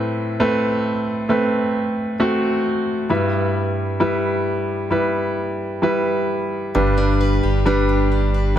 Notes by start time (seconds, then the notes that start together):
Already playing: A2 A3 C4 B4
0.40 A3 C4 B4
1.29 A3 C4 B4
2.20 A3 C4 F#4
3.10 G2 G3 E4 B4
4.00 G3 E4 B4
4.90 G3 E4 B4
5.82 G3 E4 B4
6.75 G1 G2 G3 D4 B4
6.98 D4
7.21 B4
7.43 G1 G4
7.66 G3 D4 B4
7.89 G4
8.12 D4
8.34 B4